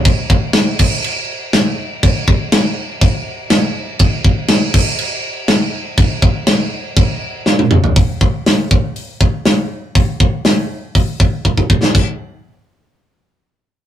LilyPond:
\new DrumStaff \with { instrumentName = "Drums" } \drummode { \time 4/4 \tempo 4 = 121 <cymc bd>8 bd8 <cymc sn>8 <cymc bd>8 cymc4 <cymc sn>4 | <cymc bd>8 bd8 <cymc sn>4 <cymc bd>4 <cymc sn>4 | <cymc bd>8 bd8 <cymc sn>8 <cymc bd>8 cymc4 <cymc sn>4 | <cymc bd>8 bd8 <cymc sn>4 <cymc bd>4 sn16 tommh16 toml16 tomfh16 |
<hho bd>8 bd8 <hho sn>8 bd8 hho8 bd8 <hho sn>4 | <hho bd>8 bd8 <hho sn>4 <hho bd>8 bd8 bd16 bd16 bd16 sn16 | <cymc bd>4 r4 r4 r4 | }